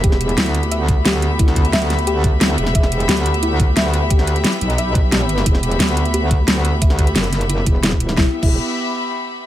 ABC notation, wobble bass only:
X:1
M:4/4
L:1/16
Q:1/4=177
K:Em
V:1 name="Wobble bass" clef=bass
E,,,4 D,,12- | D,,4 D,,8- D,,2 E,,,2 | E,,,4 D,,12- | D,,4 z2 B,,,8- B,,,2 |
E,,,4 D,,12- | D,,4 F,,,6 E,,,6 | E,,, z2 E,,,2 z8 z3 |]